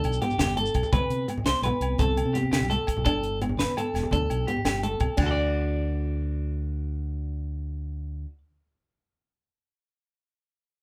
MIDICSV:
0, 0, Header, 1, 6, 480
1, 0, Start_track
1, 0, Tempo, 354820
1, 1245, Time_signature, 12, 3, 24, 8
1, 14637, End_track
2, 0, Start_track
2, 0, Title_t, "Clean electric guitar"
2, 0, Program_c, 0, 27
2, 0, Note_on_c, 0, 69, 83
2, 268, Note_off_c, 0, 69, 0
2, 293, Note_on_c, 0, 67, 65
2, 513, Note_off_c, 0, 67, 0
2, 529, Note_on_c, 0, 67, 80
2, 755, Note_off_c, 0, 67, 0
2, 772, Note_on_c, 0, 69, 68
2, 1224, Note_off_c, 0, 69, 0
2, 1252, Note_on_c, 0, 71, 92
2, 1704, Note_off_c, 0, 71, 0
2, 1972, Note_on_c, 0, 72, 78
2, 2196, Note_off_c, 0, 72, 0
2, 2210, Note_on_c, 0, 71, 70
2, 2663, Note_off_c, 0, 71, 0
2, 2698, Note_on_c, 0, 69, 85
2, 3147, Note_off_c, 0, 69, 0
2, 3165, Note_on_c, 0, 67, 64
2, 3387, Note_off_c, 0, 67, 0
2, 3403, Note_on_c, 0, 67, 69
2, 3631, Note_off_c, 0, 67, 0
2, 3650, Note_on_c, 0, 69, 67
2, 4103, Note_off_c, 0, 69, 0
2, 4122, Note_on_c, 0, 69, 81
2, 4578, Note_off_c, 0, 69, 0
2, 4855, Note_on_c, 0, 71, 68
2, 5077, Note_off_c, 0, 71, 0
2, 5108, Note_on_c, 0, 69, 62
2, 5552, Note_off_c, 0, 69, 0
2, 5578, Note_on_c, 0, 69, 68
2, 6027, Note_off_c, 0, 69, 0
2, 6052, Note_on_c, 0, 67, 72
2, 6276, Note_off_c, 0, 67, 0
2, 6306, Note_on_c, 0, 67, 79
2, 6523, Note_off_c, 0, 67, 0
2, 6539, Note_on_c, 0, 69, 59
2, 6988, Note_off_c, 0, 69, 0
2, 7015, Note_on_c, 0, 62, 59
2, 7072, Note_on_c, 0, 66, 62
2, 7119, Note_on_c, 0, 69, 61
2, 7175, Note_off_c, 0, 69, 0
2, 7181, Note_on_c, 0, 74, 65
2, 11168, Note_off_c, 0, 62, 0
2, 11225, Note_off_c, 0, 66, 0
2, 11333, Note_off_c, 0, 74, 0
2, 14637, End_track
3, 0, Start_track
3, 0, Title_t, "Nylon-string guitar"
3, 0, Program_c, 1, 24
3, 0, Note_on_c, 1, 62, 76
3, 198, Note_off_c, 1, 62, 0
3, 297, Note_on_c, 1, 59, 74
3, 674, Note_off_c, 1, 59, 0
3, 769, Note_on_c, 1, 57, 65
3, 1148, Note_off_c, 1, 57, 0
3, 1256, Note_on_c, 1, 60, 86
3, 1633, Note_off_c, 1, 60, 0
3, 1733, Note_on_c, 1, 59, 65
3, 2111, Note_off_c, 1, 59, 0
3, 2241, Note_on_c, 1, 59, 66
3, 2608, Note_off_c, 1, 59, 0
3, 2703, Note_on_c, 1, 60, 86
3, 3076, Note_off_c, 1, 60, 0
3, 3181, Note_on_c, 1, 59, 69
3, 3555, Note_off_c, 1, 59, 0
3, 3659, Note_on_c, 1, 57, 65
3, 4034, Note_off_c, 1, 57, 0
3, 4140, Note_on_c, 1, 62, 81
3, 4515, Note_off_c, 1, 62, 0
3, 4621, Note_on_c, 1, 59, 70
3, 4995, Note_off_c, 1, 59, 0
3, 5108, Note_on_c, 1, 59, 68
3, 5480, Note_off_c, 1, 59, 0
3, 5583, Note_on_c, 1, 62, 75
3, 5957, Note_off_c, 1, 62, 0
3, 6063, Note_on_c, 1, 59, 66
3, 6437, Note_off_c, 1, 59, 0
3, 6539, Note_on_c, 1, 57, 64
3, 6914, Note_off_c, 1, 57, 0
3, 6996, Note_on_c, 1, 62, 76
3, 7142, Note_off_c, 1, 62, 0
3, 14637, End_track
4, 0, Start_track
4, 0, Title_t, "Fingered electric bass"
4, 0, Program_c, 2, 33
4, 48, Note_on_c, 2, 35, 80
4, 249, Note_off_c, 2, 35, 0
4, 517, Note_on_c, 2, 31, 84
4, 923, Note_off_c, 2, 31, 0
4, 1008, Note_on_c, 2, 35, 68
4, 1107, Note_off_c, 2, 35, 0
4, 1251, Note_on_c, 2, 36, 89
4, 1349, Note_off_c, 2, 36, 0
4, 1484, Note_on_c, 2, 48, 69
4, 1685, Note_off_c, 2, 48, 0
4, 1954, Note_on_c, 2, 36, 77
4, 2059, Note_off_c, 2, 36, 0
4, 2194, Note_on_c, 2, 35, 78
4, 2299, Note_off_c, 2, 35, 0
4, 2442, Note_on_c, 2, 36, 66
4, 2644, Note_off_c, 2, 36, 0
4, 2689, Note_on_c, 2, 36, 80
4, 2989, Note_off_c, 2, 36, 0
4, 3046, Note_on_c, 2, 48, 81
4, 3535, Note_on_c, 2, 36, 73
4, 3555, Note_off_c, 2, 48, 0
4, 3731, Note_off_c, 2, 36, 0
4, 4024, Note_on_c, 2, 35, 73
4, 4116, Note_off_c, 2, 35, 0
4, 4128, Note_on_c, 2, 31, 90
4, 4933, Note_off_c, 2, 31, 0
4, 5327, Note_on_c, 2, 28, 80
4, 5426, Note_off_c, 2, 28, 0
4, 5576, Note_on_c, 2, 38, 75
4, 5772, Note_off_c, 2, 38, 0
4, 5820, Note_on_c, 2, 35, 79
4, 6015, Note_off_c, 2, 35, 0
4, 6284, Note_on_c, 2, 31, 87
4, 6687, Note_off_c, 2, 31, 0
4, 6763, Note_on_c, 2, 36, 62
4, 6864, Note_off_c, 2, 36, 0
4, 7004, Note_on_c, 2, 38, 80
4, 11156, Note_off_c, 2, 38, 0
4, 14637, End_track
5, 0, Start_track
5, 0, Title_t, "Shekere"
5, 174, Note_on_c, 9, 82, 53
5, 309, Note_off_c, 9, 82, 0
5, 413, Note_on_c, 9, 82, 22
5, 539, Note_off_c, 9, 82, 0
5, 539, Note_on_c, 9, 82, 81
5, 674, Note_off_c, 9, 82, 0
5, 890, Note_on_c, 9, 82, 62
5, 1026, Note_off_c, 9, 82, 0
5, 1129, Note_on_c, 9, 82, 23
5, 1264, Note_off_c, 9, 82, 0
5, 14637, End_track
6, 0, Start_track
6, 0, Title_t, "Drums"
6, 53, Note_on_c, 9, 42, 46
6, 65, Note_on_c, 9, 68, 59
6, 189, Note_off_c, 9, 42, 0
6, 200, Note_off_c, 9, 68, 0
6, 294, Note_on_c, 9, 42, 46
6, 423, Note_on_c, 9, 64, 55
6, 429, Note_off_c, 9, 42, 0
6, 533, Note_on_c, 9, 38, 88
6, 533, Note_on_c, 9, 42, 63
6, 535, Note_off_c, 9, 64, 0
6, 535, Note_on_c, 9, 63, 87
6, 535, Note_on_c, 9, 64, 28
6, 546, Note_on_c, 9, 68, 68
6, 668, Note_off_c, 9, 38, 0
6, 668, Note_off_c, 9, 42, 0
6, 671, Note_off_c, 9, 63, 0
6, 671, Note_off_c, 9, 64, 0
6, 681, Note_off_c, 9, 68, 0
6, 774, Note_on_c, 9, 42, 42
6, 782, Note_on_c, 9, 64, 26
6, 910, Note_off_c, 9, 42, 0
6, 917, Note_off_c, 9, 64, 0
6, 1006, Note_on_c, 9, 42, 42
6, 1012, Note_on_c, 9, 36, 56
6, 1016, Note_on_c, 9, 68, 60
6, 1019, Note_on_c, 9, 64, 26
6, 1124, Note_off_c, 9, 64, 0
6, 1124, Note_on_c, 9, 64, 68
6, 1141, Note_off_c, 9, 42, 0
6, 1147, Note_off_c, 9, 36, 0
6, 1152, Note_off_c, 9, 68, 0
6, 1254, Note_on_c, 9, 36, 92
6, 1256, Note_off_c, 9, 64, 0
6, 1256, Note_on_c, 9, 63, 88
6, 1256, Note_on_c, 9, 64, 26
6, 1257, Note_on_c, 9, 42, 61
6, 1259, Note_on_c, 9, 68, 67
6, 1389, Note_off_c, 9, 36, 0
6, 1391, Note_off_c, 9, 63, 0
6, 1391, Note_off_c, 9, 64, 0
6, 1392, Note_off_c, 9, 42, 0
6, 1394, Note_off_c, 9, 68, 0
6, 1493, Note_on_c, 9, 42, 49
6, 1628, Note_off_c, 9, 42, 0
6, 1738, Note_on_c, 9, 42, 44
6, 1752, Note_on_c, 9, 68, 50
6, 1859, Note_on_c, 9, 64, 69
6, 1874, Note_off_c, 9, 42, 0
6, 1888, Note_off_c, 9, 68, 0
6, 1970, Note_on_c, 9, 38, 80
6, 1970, Note_on_c, 9, 42, 59
6, 1973, Note_on_c, 9, 63, 75
6, 1995, Note_off_c, 9, 64, 0
6, 2106, Note_off_c, 9, 38, 0
6, 2106, Note_off_c, 9, 42, 0
6, 2108, Note_off_c, 9, 63, 0
6, 2210, Note_on_c, 9, 42, 50
6, 2213, Note_on_c, 9, 68, 57
6, 2345, Note_off_c, 9, 42, 0
6, 2349, Note_off_c, 9, 68, 0
6, 2450, Note_on_c, 9, 42, 45
6, 2467, Note_on_c, 9, 68, 59
6, 2586, Note_off_c, 9, 42, 0
6, 2602, Note_off_c, 9, 68, 0
6, 2684, Note_on_c, 9, 63, 76
6, 2695, Note_on_c, 9, 36, 85
6, 2703, Note_on_c, 9, 42, 67
6, 2819, Note_off_c, 9, 63, 0
6, 2831, Note_off_c, 9, 36, 0
6, 2838, Note_off_c, 9, 42, 0
6, 2940, Note_on_c, 9, 42, 48
6, 2942, Note_on_c, 9, 68, 56
6, 3076, Note_off_c, 9, 42, 0
6, 3077, Note_off_c, 9, 68, 0
6, 3179, Note_on_c, 9, 42, 47
6, 3284, Note_on_c, 9, 64, 57
6, 3315, Note_off_c, 9, 42, 0
6, 3408, Note_off_c, 9, 64, 0
6, 3408, Note_on_c, 9, 63, 71
6, 3408, Note_on_c, 9, 64, 23
6, 3420, Note_on_c, 9, 38, 80
6, 3420, Note_on_c, 9, 42, 59
6, 3423, Note_on_c, 9, 68, 63
6, 3544, Note_off_c, 9, 63, 0
6, 3544, Note_off_c, 9, 64, 0
6, 3555, Note_off_c, 9, 38, 0
6, 3555, Note_off_c, 9, 42, 0
6, 3559, Note_off_c, 9, 68, 0
6, 3660, Note_on_c, 9, 42, 44
6, 3661, Note_on_c, 9, 64, 23
6, 3780, Note_off_c, 9, 64, 0
6, 3780, Note_on_c, 9, 64, 21
6, 3796, Note_off_c, 9, 42, 0
6, 3886, Note_on_c, 9, 68, 58
6, 3893, Note_off_c, 9, 64, 0
6, 3893, Note_on_c, 9, 64, 24
6, 3898, Note_on_c, 9, 36, 59
6, 3904, Note_on_c, 9, 42, 52
6, 4012, Note_off_c, 9, 64, 0
6, 4012, Note_on_c, 9, 64, 61
6, 4021, Note_off_c, 9, 68, 0
6, 4033, Note_off_c, 9, 36, 0
6, 4039, Note_off_c, 9, 42, 0
6, 4132, Note_on_c, 9, 63, 69
6, 4134, Note_on_c, 9, 42, 70
6, 4138, Note_on_c, 9, 36, 85
6, 4146, Note_on_c, 9, 68, 62
6, 4148, Note_off_c, 9, 64, 0
6, 4256, Note_on_c, 9, 64, 21
6, 4267, Note_off_c, 9, 63, 0
6, 4269, Note_off_c, 9, 42, 0
6, 4273, Note_off_c, 9, 36, 0
6, 4281, Note_off_c, 9, 68, 0
6, 4376, Note_on_c, 9, 42, 42
6, 4391, Note_off_c, 9, 64, 0
6, 4490, Note_on_c, 9, 64, 24
6, 4511, Note_off_c, 9, 42, 0
6, 4600, Note_off_c, 9, 64, 0
6, 4600, Note_on_c, 9, 64, 24
6, 4620, Note_on_c, 9, 42, 39
6, 4623, Note_on_c, 9, 68, 58
6, 4726, Note_off_c, 9, 64, 0
6, 4726, Note_on_c, 9, 64, 70
6, 4755, Note_off_c, 9, 42, 0
6, 4758, Note_off_c, 9, 68, 0
6, 4844, Note_off_c, 9, 64, 0
6, 4844, Note_on_c, 9, 63, 71
6, 4844, Note_on_c, 9, 64, 20
6, 4862, Note_on_c, 9, 38, 77
6, 4862, Note_on_c, 9, 42, 52
6, 4979, Note_off_c, 9, 63, 0
6, 4979, Note_off_c, 9, 64, 0
6, 4997, Note_off_c, 9, 38, 0
6, 4997, Note_off_c, 9, 42, 0
6, 5101, Note_on_c, 9, 68, 62
6, 5115, Note_on_c, 9, 42, 46
6, 5236, Note_off_c, 9, 68, 0
6, 5250, Note_off_c, 9, 42, 0
6, 5343, Note_on_c, 9, 68, 57
6, 5353, Note_on_c, 9, 38, 24
6, 5353, Note_on_c, 9, 42, 41
6, 5455, Note_on_c, 9, 64, 69
6, 5479, Note_off_c, 9, 68, 0
6, 5489, Note_off_c, 9, 38, 0
6, 5489, Note_off_c, 9, 42, 0
6, 5560, Note_off_c, 9, 64, 0
6, 5560, Note_on_c, 9, 63, 76
6, 5560, Note_on_c, 9, 64, 24
6, 5584, Note_on_c, 9, 36, 78
6, 5587, Note_on_c, 9, 42, 61
6, 5695, Note_off_c, 9, 63, 0
6, 5695, Note_off_c, 9, 64, 0
6, 5695, Note_on_c, 9, 64, 22
6, 5719, Note_off_c, 9, 36, 0
6, 5722, Note_off_c, 9, 42, 0
6, 5818, Note_on_c, 9, 68, 57
6, 5828, Note_on_c, 9, 42, 45
6, 5830, Note_off_c, 9, 64, 0
6, 5942, Note_on_c, 9, 64, 20
6, 5953, Note_off_c, 9, 68, 0
6, 5964, Note_off_c, 9, 42, 0
6, 6060, Note_on_c, 9, 42, 43
6, 6077, Note_off_c, 9, 64, 0
6, 6178, Note_on_c, 9, 64, 58
6, 6195, Note_off_c, 9, 42, 0
6, 6290, Note_on_c, 9, 68, 60
6, 6295, Note_on_c, 9, 38, 81
6, 6295, Note_on_c, 9, 42, 60
6, 6298, Note_on_c, 9, 63, 47
6, 6314, Note_off_c, 9, 64, 0
6, 6425, Note_off_c, 9, 68, 0
6, 6431, Note_off_c, 9, 38, 0
6, 6431, Note_off_c, 9, 42, 0
6, 6433, Note_off_c, 9, 63, 0
6, 6537, Note_on_c, 9, 64, 51
6, 6540, Note_on_c, 9, 42, 48
6, 6673, Note_off_c, 9, 64, 0
6, 6675, Note_off_c, 9, 42, 0
6, 6764, Note_on_c, 9, 42, 44
6, 6771, Note_on_c, 9, 64, 62
6, 6772, Note_on_c, 9, 36, 57
6, 6773, Note_on_c, 9, 68, 64
6, 6899, Note_off_c, 9, 42, 0
6, 6907, Note_off_c, 9, 36, 0
6, 6907, Note_off_c, 9, 64, 0
6, 6908, Note_off_c, 9, 68, 0
6, 6998, Note_on_c, 9, 49, 70
6, 7008, Note_on_c, 9, 36, 88
6, 7010, Note_on_c, 9, 68, 81
6, 7013, Note_on_c, 9, 63, 74
6, 7133, Note_off_c, 9, 49, 0
6, 7143, Note_off_c, 9, 36, 0
6, 7145, Note_off_c, 9, 68, 0
6, 7148, Note_off_c, 9, 63, 0
6, 14637, End_track
0, 0, End_of_file